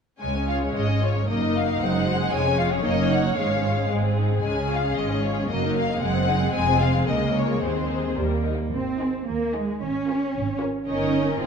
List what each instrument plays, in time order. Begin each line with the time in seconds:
0.21 double bass section C#2, cello section C#2, viola section G#3 C#4, violin section G#3 C#5 G#5
0.36 violin section C#4
0.49 violin section F4 F5
0.62 violin section C#4
0.74 double bass section G#1, cello section G#2, violin section G#3 D#5
0.87 violin section C#4
1.02 violin section F4 C#5
1.15 violin section C#4
1.28 double bass section F#1, cello section F#2, violin section A#3 A#4 D#5, viola section A#3 D#4
1.41 violin section D#4
1.55 violin section F#4 F5
1.68 violin section D#4
1.80 double bass section F#1, cello section F#2, viola section G#3, violin section C4 C5 F#5
1.93 violin section D#4
2.07 violin section F#4
2.20 violin section G#4
2.31 double bass section F1, cello section F2, violin section G#3 C#5 G#5, viola section C#4
2.46 violin section C#4
2.59 violin section F4 F5
2.72 violin section G#4
2.83 double bass section F#1, cello section F#2, viola section A#3 D#4, violin section A#3 D#5
2.98 violin section C#4
3.10 violin section D#4 F#5
3.24 violin section F#4
3.36 double bass section G#1, cello section G#2, viola section G#3 C#4, violin section G#3 F5
3.52 violin section C#4
3.65 violin section F4
3.78 violin section C#4
3.89 double bass section G#1, cello section G#2, violin section G#3 G#4, viola section C4
4.04 violin section C4
4.17 violin section D#4
4.32 violin section C4
4.43 double bass section C#2, cello section C#3, violin section G#3 G#5, viola section C#4
4.57 violin section C#4
4.70 violin section F4 F5
4.84 violin section C#4
4.96 double bass section G#1, cello section G#2, violin section G#3 D#5
5.11 violin section C#4
5.23 violin section F4 C#5
5.39 violin section C#4
5.48 double bass section F#1, cello section F#2, viola section F#3 A#3, violin section A#3 A#4 D#5
5.64 violin section D#4
5.75 violin section A#3 F5
5.90 violin section D#4
6.00 double bass section F#1, cello section F#2, viola section G#3 C4, violin section G#3 G#4 F#5
6.14 violin section C4
6.27 violin section D#4
6.39 violin section C4
6.52 double bass section F1, cello section F2, violin section G#3 G#5
6.66 violin section C4
6.79 violin section F4 F5
6.94 violin section C4
7.06 cello section C#2, double bass section C#2, violin section G#3 A#4 D#5, viola section A#3
7.20 violin section A#3
7.34 violin section C#4 C#5
7.48 violin section F4
7.61 cello section D#2, double bass section D#2, violin section G#3 G#4 C5, viola section C4
7.75 violin section C4
7.89 violin section D#4
8.03 violin section C4
8.17 double bass section D#2, cello section D#2, violin section G3 A#4, viola section G3 A#3
8.31 violin section A#3
8.45 violin section D#4
8.58 violin section A#3
8.73 double bass section G#1, cello section C4
8.99 viola section D#4, violin section G#4 D#5
9.27 double bass section D#2, cello section A#3
9.54 cello section G#3, viola section D#4, violin section G#4 D#5
9.81 double bass section G#1, cello section C#4
10.08 viola section F4, violin section A#4 C#5
10.35 double bass section G#1
10.61 viola section F4, violin section A#4 C#5
10.87 double bass section G1, cello section C#4, viola section D#4, violin section A#4 D#5
11.39 double bass section F1, cello section C4, viola section F4, violin section G#4 C5